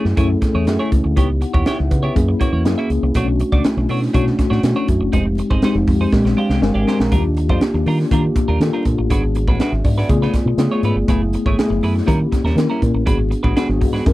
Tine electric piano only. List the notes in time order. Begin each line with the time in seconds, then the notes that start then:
Already playing: A3 C#4 E4 G#4
0.17 A3 C#4 E4 A4
0.68 A3 C#4 E4 G#4
1.16 B3 D#4 E4 G4
1.42 F#5
1.66 E5
1.90 B4
2.15 A#3 C#4 E4 G#4
2.65 A#3 C#4 E4 G#4
3.15 A3 C#4 D4 F#4
3.64 A3 C#4 D4 E4
4.14 A3 C#4 D4 F#4
4.63 A3 C#4 D4 F#4
5.14 G#3 C4 D#4 G4
5.63 G#3 C4 D#4 G4
6.13 G#3 C4 D4 G4
6.38 F5
6.62 G#3 C4 D4 A#4 G#5
6.88 A#5
7.12 A#3 D4 F4 G4
7.61 A#3 D4 F4 G4
8.11 A#3 D4 F4 G4
8.60 A#3 D4 F4 A4
9.10 B3 D4 F#4 G#4
9.60 E5
9.84 D5
10.09 A3 B3 F4 G#4
10.57 A3 B3 F4 G#4
11.07 A3 B3 E4 G#4
11.58 A3 B3 E4 G#4
12.06 A#3 C#4 E4 G4
12.56 A#3 C#4 E4 A#4
13.06 B3 D4 F#4 G#4
13.56 B3 D4 F#4 G#4
14.06 C#4 D4 E4 A#4